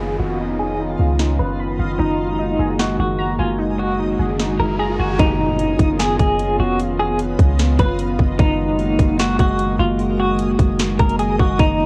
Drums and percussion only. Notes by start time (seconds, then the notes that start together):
1.19 snare
2.79 snare
4.39 snare
5.19 kick, closed hi-hat
5.59 closed hi-hat
5.79 kick, closed hi-hat
5.99 snare, closed hi-hat
6.19 kick, closed hi-hat
6.39 closed hi-hat
6.79 closed hi-hat
7.19 closed hi-hat
7.39 kick, closed hi-hat
7.59 snare, closed hi-hat
7.79 kick, closed hi-hat
7.99 closed hi-hat
8.19 kick
8.39 kick, closed hi-hat
8.79 closed hi-hat
8.99 kick, closed hi-hat
9.19 snare, closed hi-hat
9.39 kick, closed hi-hat
9.59 closed hi-hat
9.99 closed hi-hat
10.39 closed hi-hat
10.59 kick, closed hi-hat
10.79 snare, closed hi-hat
10.99 kick, closed hi-hat
11.09 closed hi-hat
11.19 closed hi-hat
11.39 kick
11.59 kick, closed hi-hat